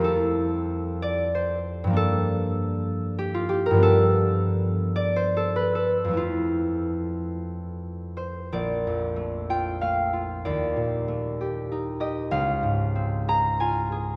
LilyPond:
<<
  \new Staff \with { instrumentName = "Harp" } { \time 6/8 \key f \major \tempo 4. = 62 <a' bes'>4. d''8 c''4 | a'2 g'16 f'16 g'16 bes'16 | a'4. d''16 c''16 a'16 b'16 a'8 | f'2~ f'8 c''8 |
\key bes \major d''4. g''8 f''4 | d''2~ d''8 ees''8 | f''4. bes''8 aes''4 | }
  \new Staff \with { instrumentName = "Harp" } { \time 6/8 \key f \major << { r2. | r2. | r2. | r2. |
\key bes \major bes,,8 f,8 a8 f'8 a8 f'8 | ees,8 bes,8 a8 g'8 ees'8 g'8 | des,8 aes,8 c'8 aes'8 f'8 aes'8 | } \\ { <f, f a e'>2. | <g, f bes d'>2. | <g, f b d'>2. | <f, f a e'>2.~ |
<f, f a e'>2.~ | <f, f a e'>2. | r2. | } >> }
>>